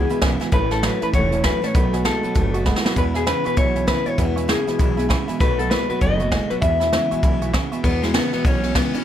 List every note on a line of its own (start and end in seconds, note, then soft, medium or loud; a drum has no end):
0.00 0.10 E3 medium
0.00 0.10 G#3 medium
0.00 0.18 G#4 medium
0.09 0.21 E2 medium
0.09 0.21 B2 medium
0.09 0.20 E3 medium
0.09 0.21 G#3 medium
0.09 0.22 B3 medium
0.09 0.22 E4 medium
0.09 0.18 B4 medium
0.09 0.17 E5 medium
0.09 0.17 B5 loud
0.09 closed hi-hat medium
0.21 0.38 B1 medium
0.21 0.39 E2 medium
0.21 0.39 C#3 medium
0.21 0.40 E3 medium
0.21 0.41 G#3 medium
0.21 0.39 B3 medium
0.21 0.39 E4 medium
0.21 0.33 B4 loud
0.21 0.33 E5 loud
0.21 0.33 G#5 loud
0.21 kick medium
0.21 snare loud
0.21 closed hi-hat medium
0.40 0.51 E2 medium
0.40 0.51 B2 medium
0.40 0.51 E3 medium
0.40 0.52 G#3 medium
0.40 0.52 B3 medium
0.40 0.52 E4 medium
0.40 0.47 B4 medium
0.40 0.48 E5 medium
0.40 0.48 G#5 loud
0.40 muted upright bass stroke medium
0.40 snare soft
0.40 closed hi-hat medium
0.52 0.87 A1 loud
0.52 0.71 A2 medium
0.52 0.69 A2 loud
0.52 0.71 E3 medium
0.52 0.69 E3 loud
0.52 0.71 A3 medium
0.52 0.71 C#4 medium
0.52 0.70 E4 medium
0.52 0.70 B4 loud
0.52 0.64 C#5 medium
0.52 0.64 E5 medium
0.52 0.64 A5 loud
0.52 kick loud
0.52 closed hi-hat medium
0.71 0.82 A2 medium
0.71 0.82 E3 medium
0.71 0.83 A3 soft
0.71 0.83 C#4 medium
0.71 0.83 E4 medium
0.71 0.84 A4 medium
0.71 0.78 C#5 loud
0.71 0.78 E5 medium
0.71 0.78 A5 loud
0.71 snare soft
0.71 closed hi-hat medium
0.82 1.00 A2 medium
0.82 1.01 E3 medium
0.82 1.00 F#3 loud
0.82 1.02 A3 medium
0.82 1.02 C#4 medium
0.82 1.01 E4 medium
0.82 1.02 B4 medium
0.82 0.94 C#5 medium
0.82 0.94 E5 medium
0.82 0.94 A5 medium
0.82 snare loud
0.82 closed hi-hat medium
1.01 1.12 A2 medium
1.01 1.13 E3 medium
1.01 1.13 A3 soft
1.01 1.13 C#4 soft
1.01 1.14 E4 medium
1.01 1.08 B4 medium
1.01 1.09 C#5 medium
1.01 1.09 E5 medium
1.01 1.09 A5 medium
1.01 muted upright bass stroke medium
1.01 closed hi-hat medium
1.13 1.48 E1 medium
1.13 1.30 A2 medium
1.13 1.32 A2 medium
1.13 1.31 E3 loud
1.13 1.33 E3 medium
1.13 1.33 A3 medium
1.13 1.32 C#4 medium
1.13 1.31 E4 medium
1.13 1.25 C#5 medium
1.13 1.45 C#5 medium
1.13 1.25 E5 medium
1.13 1.25 F#5 medium
1.13 kick loud
1.13 closed hi-hat medium
1.32 1.43 A2 medium
1.32 1.43 E3 medium
1.32 1.43 A3 soft
1.32 1.44 C#4 soft
1.32 1.44 E4 medium
1.32 1.40 C#5 medium
1.32 1.40 E5 medium
1.32 1.40 A5 medium
1.32 closed hi-hat medium
1.44 1.61 A2 medium
1.44 1.63 E3 medium
1.44 1.61 F#3 medium
1.44 1.63 A3 medium
1.44 1.62 C#4 medium
1.44 1.61 E4 medium
1.44 1.64 B4 loud
1.44 1.56 C#5 loud
1.44 1.56 E5 medium
1.44 1.56 G#5 loud
1.44 kick medium
1.44 snare loud
1.44 closed hi-hat medium
1.62 1.73 A2 medium
1.62 1.73 E3 medium
1.62 1.74 A3 soft
1.62 1.75 C#4 medium
1.62 1.74 E4 medium
1.62 1.70 C#5 medium
1.62 1.75 C#5 loud
1.62 1.70 E5 medium
1.62 1.70 A5 medium
1.62 muted upright bass stroke medium
1.62 snare soft
1.62 closed hi-hat medium
1.74 2.09 B1 medium
1.74 1.91 B2 medium
1.74 1.93 B2 medium
1.74 1.93 D#3 medium
1.74 1.91 F#3 loud
1.74 1.94 A3 medium
1.74 1.93 B3 medium
1.74 1.92 F#4 medium
1.74 2.05 B4 medium
1.74 1.86 D#5 medium
1.74 1.86 F#5 medium
1.74 1.86 B5 medium
1.74 kick loud
1.74 closed hi-hat medium
1.93 2.04 B2 medium
1.93 2.04 F#3 medium
1.93 2.04 A3 soft
1.93 2.05 B3 soft
1.93 2.05 F#4 medium
1.93 2.00 D#5 loud
1.93 2.00 F#5 medium
1.93 2.00 G#5 loud
1.93 snare soft
1.93 closed hi-hat medium
2.04 2.22 B2 medium
2.04 2.23 D#3 medium
2.04 2.22 G#3 medium
2.04 2.24 A3 medium
2.04 2.23 B3 medium
2.04 2.22 F#4 medium
2.04 2.62 A4 medium
2.04 2.16 D#5 medium
2.04 2.16 A5 medium
2.04 snare loud
2.04 closed hi-hat medium
2.23 2.35 B2 medium
2.23 2.35 F#3 medium
2.23 2.35 A3 soft
2.23 2.35 B3 soft
2.23 2.35 F#4 medium
2.23 2.31 D#5 medium
2.23 2.31 F#5 medium
2.23 2.31 B5 medium
2.23 muted upright bass stroke medium
2.23 closed hi-hat medium
2.35 2.70 F#1 medium
2.35 2.54 B2 medium
2.35 2.53 B2 medium
2.35 2.54 D#3 medium
2.35 2.53 F#3 medium
2.35 2.55 A3 medium
2.35 2.54 B3 medium
2.35 2.53 F#4 medium
2.35 2.46 D#5 medium
2.35 2.47 F#5 medium
2.35 2.46 A5 medium
2.35 kick loud
2.35 closed hi-hat medium
2.54 2.64 B2 medium
2.54 2.65 F#3 medium
2.54 2.65 A3 medium
2.54 2.66 B3 medium
2.54 2.66 F#4 medium
2.54 2.61 D#5 medium
2.54 2.61 F#5 medium
2.54 2.61 C#6 loud
2.54 closed hi-hat medium
2.65 2.83 B2 medium
2.65 2.85 D#3 medium
2.65 2.83 G#3 loud
2.65 2.85 A3 medium
2.65 2.84 B3 medium
2.65 2.83 F#4 medium
2.65 2.77 D#5 loud
2.65 2.77 F#5 loud
2.65 2.77 B5 loud
2.65 kick medium
2.65 snare medium
2.76 snare medium
2.84 2.95 B2 medium
2.84 2.96 F#3 medium
2.84 2.97 A3 medium
2.84 2.96 B3 medium
2.84 2.96 F#4 medium
2.84 2.92 D#5 medium
2.84 2.92 F#5 medium
2.84 2.92 B5 loud
2.84 muted upright bass stroke medium
2.84 snare medium
2.96 3.31 E2 medium
2.96 3.15 E2 medium
2.96 3.13 E2 medium
2.96 3.15 B2 medium
2.96 3.14 B2 medium
2.96 3.15 E3 medium
2.96 3.15 G#3 medium
2.96 3.15 B3 medium
2.96 3.14 E4 medium
2.96 3.03 B4 loud
2.96 3.08 E5 medium
2.96 3.08 G#5 medium
2.96 3.08 B5 loud
2.96 kick loud
2.96 closed hi-hat medium
3.14 3.26 E2 medium
3.14 3.26 B2 medium
3.14 3.25 E3 soft
3.14 3.26 G#3 soft
3.14 3.27 B3 soft
3.14 3.27 E4 medium
3.14 3.27 G#4 medium
3.14 3.22 E5 loud
3.14 3.22 G#5 medium
3.14 3.22 B5 loud
3.14 snare soft
3.14 closed hi-hat medium
3.26 3.44 E2 medium
3.26 3.44 C#3 loud
3.26 3.45 E3 medium
3.26 3.45 G#3 medium
3.26 3.44 B3 medium
3.26 3.43 E4 medium
3.26 3.46 B4 medium
3.26 3.38 E5 medium
3.26 snare loud
3.26 closed hi-hat medium
3.44 3.56 E2 medium
3.44 3.57 B2 medium
3.44 3.56 E3 soft
3.44 3.56 G#3 soft
3.44 3.56 B3 medium
3.44 3.57 E4 soft
3.44 3.58 B4 medium
3.44 3.53 E5 medium
3.44 3.52 G#5 medium
3.44 3.53 C#6 medium
3.44 muted upright bass stroke medium
3.44 closed hi-hat medium
3.57 3.92 B1 medium
3.57 3.76 E2 medium
3.57 3.74 E2 medium
3.57 3.76 B2 medium
3.57 3.75 B2 medium
3.57 3.76 E3 medium
3.57 3.76 G#3 medium
3.57 3.75 B3 medium
3.57 3.74 E4 medium
3.57 3.86 C#5 loud
3.57 3.69 E5 medium
3.57 3.69 G#5 medium
3.57 3.69 B5 medium
3.57 kick loud
3.57 closed hi-hat medium
3.76 3.87 E2 medium
3.76 3.87 B2 medium
3.76 3.86 E3 soft
3.76 3.87 G#3 soft
3.76 3.87 B3 soft
3.76 3.88 E4 medium
3.76 3.83 E5 medium
3.76 3.83 G#5 medium
3.76 3.83 B5 medium
3.76 closed hi-hat medium
3.87 4.05 E2 medium
3.87 4.05 C#3 medium
3.87 4.06 E3 medium
3.87 4.06 G#3 medium
3.87 4.05 B3 medium
3.87 4.05 E4 medium
3.87 4.06 B4 loud
3.87 3.99 E5 loud
3.87 3.99 G#5 medium
3.87 3.99 B5 loud
3.87 kick medium
3.87 snare loud
3.87 closed hi-hat medium
4.06 4.17 E2 medium
4.06 4.17 B2 medium
4.06 4.17 E3 soft
4.06 4.18 G#3 soft
4.06 4.18 B3 medium
4.06 4.18 E4 medium
4.06 4.18 C#5 loud
4.06 4.13 E5 medium
4.06 4.13 G#5 medium
4.06 4.13 B5 medium
4.06 muted upright bass stroke medium
4.06 closed hi-hat medium
4.17 4.37 E2 medium
4.17 4.35 E2 medium
4.17 4.53 E2 loud
4.17 4.37 B2 medium
4.17 4.35 B2 loud
4.17 4.37 E3 medium
4.17 4.38 G#3 medium
4.17 4.36 B3 medium
4.17 4.35 E4 medium
4.17 4.49 B4 loud
4.17 4.29 E5 medium
4.17 4.29 G#5 medium
4.17 4.29 B5 medium
4.17 kick loud
4.17 closed hi-hat loud
4.36 4.47 E2 medium
4.36 4.48 B2 medium
4.36 4.47 E3 soft
4.36 4.48 G#3 soft
4.36 4.49 B3 soft
4.36 4.49 E4 soft
4.36 4.44 E5 loud
4.36 4.44 G#5 medium
4.36 4.44 C#6 loud
4.36 closed hi-hat medium
4.48 4.66 E2 medium
4.48 4.66 C#3 medium
4.48 4.67 E3 medium
4.48 4.68 G#3 medium
4.48 4.67 B3 medium
4.48 4.66 E4 medium
4.48 5.06 G#4 medium
4.48 4.60 E5 medium
4.48 4.60 G#5 medium
4.48 4.60 C#6 medium
4.48 snare loud
4.48 closed hi-hat medium
4.66 4.78 E2 medium
4.66 4.78 B2 medium
4.66 4.79 E3 soft
4.66 4.79 G#3 soft
4.66 4.79 B3 soft
4.66 4.79 E4 medium
4.66 4.74 E5 medium
4.66 4.74 G#5 medium
4.66 4.74 B5 medium
4.66 muted upright bass stroke medium
4.66 snare soft
4.66 closed hi-hat medium
4.78 5.14 B1 medium
4.78 4.98 E2 medium
4.78 4.96 E2 medium
4.78 4.98 B2 medium
4.78 4.96 B2 medium
4.78 4.98 E3 medium
4.78 4.98 G#3 medium
4.78 4.97 B3 medium
4.78 4.96 E4 medium
4.78 4.90 E5 medium
4.78 4.90 G#5 medium
4.78 4.90 B5 medium
4.78 kick loud
4.78 closed hi-hat medium
4.97 5.09 E2 medium
4.97 5.09 B2 medium
4.97 5.08 E3 medium
4.97 5.09 G#3 medium
4.97 5.10 B3 medium
4.97 5.09 E4 medium
4.97 5.05 E5 medium
4.97 5.05 G#5 medium
4.97 5.05 B5 loud
4.97 closed hi-hat medium
5.09 5.27 E2 medium
5.09 5.27 C#3 medium
5.09 5.28 E3 medium
5.09 5.28 G#3 medium
5.09 5.28 B3 medium
5.09 5.27 E4 medium
5.09 5.21 E5 loud
5.09 5.21 G#5 loud
5.09 5.21 B5 loud
5.09 kick medium
5.09 snare loud
5.09 closed hi-hat medium
5.28 5.39 E2 medium
5.28 5.40 B2 medium
5.28 5.40 E3 soft
5.28 5.41 G#3 medium
5.28 5.40 B3 medium
5.28 5.40 E4 medium
5.28 5.35 E5 medium
5.28 5.35 G#5 medium
5.28 5.35 B5 loud
5.28 muted upright bass stroke medium
5.28 closed hi-hat medium
5.40 5.75 B1 medium
5.40 5.59 B2 medium
5.40 5.57 B2 loud
5.40 5.59 D#3 medium
5.40 5.58 F#3 loud
5.40 5.59 A3 medium
5.40 5.59 B3 medium
5.40 5.58 F#4 loud
5.40 5.58 B4 medium
5.40 5.51 D#5 medium
5.40 5.52 F#5 medium
5.40 5.52 B5 medium
5.40 kick loud
5.40 snare soft
5.40 closed hi-hat medium
5.59 5.70 B2 medium
5.59 5.70 F#3 medium
5.59 5.71 A3 soft
5.59 5.72 B3 soft
5.59 5.71 F#4 soft
5.59 5.71 A4 medium
5.59 5.66 D#5 medium
5.59 5.66 F#5 medium
5.59 5.66 B5 loud
5.59 closed hi-hat medium
5.70 5.88 B2 medium
5.70 5.90 D#3 medium
5.70 5.88 G#3 medium
5.70 5.90 A3 medium
5.70 5.90 B3 medium
5.70 5.89 F#4 medium
5.70 5.88 B4 medium
5.70 snare loud
5.70 closed hi-hat medium
5.89 6.00 B2 medium
5.89 6.01 F#3 medium
5.89 6.00 A3 soft
5.89 6.01 B3 medium
5.89 6.01 F#4 medium
5.89 6.01 B4 medium
5.89 5.97 D#5 medium
5.89 5.97 F#5 medium
5.89 5.97 B5 medium
5.89 muted upright bass stroke medium
5.89 closed hi-hat medium
6.01 6.36 F#1 medium
6.01 6.20 B2 medium
6.01 6.18 B2 medium
6.01 6.20 D#3 medium
6.01 6.18 F#3 loud
6.01 6.20 A3 medium
6.01 6.20 B3 medium
6.01 6.18 F#4 medium
6.01 6.13 D#5 medium
6.01 6.52 D#5 medium
6.01 6.13 F#5 medium
6.01 6.13 G#5 medium
6.01 kick loud
6.01 closed hi-hat medium
6.19 6.31 B2 medium
6.19 6.31 F#3 medium
6.19 6.31 A3 soft
6.19 6.32 B3 medium
6.19 6.31 F#4 medium
6.19 6.27 D#5 medium
6.19 6.27 F#5 medium
6.19 6.27 C#6 medium
6.19 closed hi-hat medium
6.31 6.48 B2 medium
6.31 6.50 D#3 medium
6.31 6.49 G#3 loud
6.31 6.50 A3 medium
6.31 6.50 B3 medium
6.31 6.49 F#4 medium
6.31 6.43 D#5 medium
6.31 6.43 F#5 medium
6.31 6.43 G#5 loud
6.31 kick medium
6.31 snare loud
6.31 closed hi-hat medium
6.50 6.61 B2 medium
6.50 6.61 F#3 medium
6.50 6.63 A3 soft
6.50 6.63 B3 soft
6.50 6.62 F#4 medium
6.50 6.55 B4 loud
6.50 6.58 D#5 medium
6.50 6.58 F#5 medium
6.50 6.57 C#6 medium
6.50 muted upright bass stroke medium
6.50 closed hi-hat medium
6.61 6.79 E2 medium
6.61 6.96 E2 medium
6.61 6.81 E2 medium
6.61 6.79 B2 loud
6.61 6.81 E3 medium
6.61 6.81 G#3 medium
6.61 6.80 B3 medium
6.61 6.79 E4 medium
6.61 6.73 E5 medium
6.61 7.49 E5 loud
6.61 6.73 G#5 medium
6.61 6.73 B5 loud
6.61 kick loud
6.61 closed hi-hat medium
6.80 6.91 E2 medium
6.80 6.92 B2 medium
6.80 6.92 E3 soft
6.80 6.92 G#3 soft
6.80 6.93 B3 medium
6.80 6.92 E4 medium
6.80 6.87 E5 medium
6.80 6.87 G#5 medium
6.80 6.87 B5 loud
6.80 snare soft
6.80 closed hi-hat medium
6.92 7.09 E2 medium
6.92 7.09 C#3 medium
6.92 7.11 E3 medium
6.92 7.12 G#3 medium
6.92 7.11 B3 medium
6.92 7.10 E4 medium
6.92 7.03 E5 medium
6.92 7.04 G#5 medium
6.92 7.04 C#6 medium
6.92 snare loud
6.92 closed hi-hat medium
7.11 7.21 E2 medium
7.11 7.22 B2 medium
7.11 7.22 E3 soft
7.11 7.23 G#3 medium
7.11 7.23 B3 medium
7.11 7.23 E4 medium
7.11 7.18 E5 medium
7.11 7.18 G#5 medium
7.11 7.18 C#6 medium
7.11 muted upright bass stroke medium
7.11 closed hi-hat medium
7.23 7.57 B1 medium
7.23 7.39 E2 medium
7.23 7.41 E2 medium
7.23 7.42 B2 medium
7.23 7.40 B2 medium
7.23 7.42 E3 medium
7.23 7.42 G#3 medium
7.23 7.41 B3 loud
7.23 7.40 E4 loud
7.23 7.34 E5 medium
7.23 7.34 G#5 medium
7.23 7.34 B5 loud
7.23 kick loud
7.23 closed hi-hat medium
7.41 7.52 E2 medium
7.41 7.52 B2 medium
7.41 7.52 E3 soft
7.41 7.53 G#3 medium
7.41 7.54 B3 medium
7.41 7.53 E4 medium
7.41 7.49 E5 medium
7.41 7.49 G#5 medium
7.41 7.49 C#6 loud
7.41 closed hi-hat medium
7.53 7.70 E2 medium
7.53 7.70 C#3 medium
7.53 7.72 E3 medium
7.53 7.72 G#3 medium
7.53 7.72 B3 medium
7.53 7.71 E4 medium
7.53 7.64 E5 loud
7.53 7.65 G#5 loud
7.53 7.65 C#6 loud
7.53 kick medium
7.53 snare loud
7.53 closed hi-hat medium
7.71 7.82 E2 medium
7.71 7.83 B2 medium
7.71 7.84 E3 medium
7.71 7.84 G#3 medium
7.71 7.84 B3 medium
7.71 7.84 E4 medium
7.71 7.79 E5 medium
7.71 7.79 G#5 medium
7.71 7.79 C#6 medium
7.71 muted upright bass stroke medium
7.71 closed hi-hat medium
7.83 8.00 E2 loud
7.83 8.02 E2 medium
7.83 8.18 E2 medium
7.83 8.01 B2 loud
7.83 8.03 B2 medium
7.83 8.03 E3 medium
7.83 8.03 G#3 medium
7.83 8.03 B3 loud
7.83 8.02 B3 medium
7.83 8.01 E4 medium
7.83 kick loud
7.83 ride medium
8.02 8.13 E2 medium
8.02 8.13 B2 medium
8.02 8.13 E3 soft
8.02 8.14 G#3 medium
8.02 8.15 B3 medium
8.02 8.14 E4 medium
8.02 snare soft
8.02 ride medium
8.14 8.31 E2 medium
8.14 8.31 C#3 loud
8.14 8.32 E3 medium
8.14 8.33 B3 medium
8.14 8.32 E4 medium
8.14 snare loud
8.14 ride medium
8.33 8.43 E2 medium
8.33 8.44 B2 medium
8.33 8.45 E3 medium
8.33 8.45 G#3 medium
8.33 8.46 B3 medium
8.33 8.45 B3 soft
8.33 8.45 E4 medium
8.33 muted upright bass stroke medium
8.33 snare soft
8.33 ride medium
8.44 8.79 B1 medium
8.44 8.61 E2 medium
8.44 8.63 E2 medium
8.44 8.62 B2 medium
8.44 8.64 B2 medium
8.44 8.64 E3 medium
8.44 8.64 G#3 medium
8.44 8.63 B3 medium
8.44 8.75 C#4 medium
8.44 8.63 E4 loud
8.44 kick loud
8.44 ride medium
8.63 8.73 E2 medium
8.63 8.74 B2 medium
8.63 8.74 E3 soft
8.63 8.75 G#3 medium
8.63 8.76 B3 soft
8.63 8.75 E4 medium
8.63 ride medium
8.75 8.92 E2 medium
8.75 8.92 C#3 medium
8.75 8.94 E3 medium
8.75 8.94 G#3 medium
8.75 8.95 B3 medium
8.75 8.93 B3 medium
8.75 8.92 E4 medium
8.75 kick medium
8.75 snare loud
8.75 ride medium
8.93 9.04 E2 medium
8.93 9.04 B2 medium
8.93 9.04 E3 soft
8.93 9.04 G#3 soft
8.93 9.04 B3 medium
8.93 9.04 C#4 loud
8.93 9.04 E4 soft
8.93 muted upright bass stroke medium
8.93 ride medium